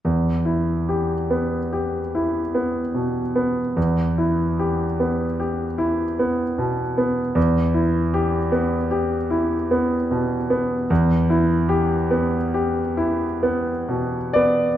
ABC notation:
X:1
M:9/8
L:1/8
Q:3/8=50
K:Em
V:1 name="Grand piano"
E,, E G B, G E B, B,, B, | E,, E G B, G E B, B,, B, | E,, E G B, G E B, B,, B, | E,, E G B, G E B, B,, [B,d] |]